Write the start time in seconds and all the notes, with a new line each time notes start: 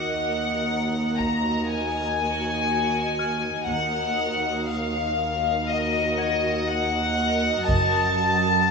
Already playing: D#2 F#4 A#4 D#5 F#5 D6
1.17 A#5, taiko
1.67 G#5
3.19 F6
3.68 D#2 F#4 A#4 D#5 F#5
4.69 F5
5.69 D#5
6.17 F#5 G#6
6.69 F#5
7.68 F#1 F#2 F#4 A4 F#5 A5, taiko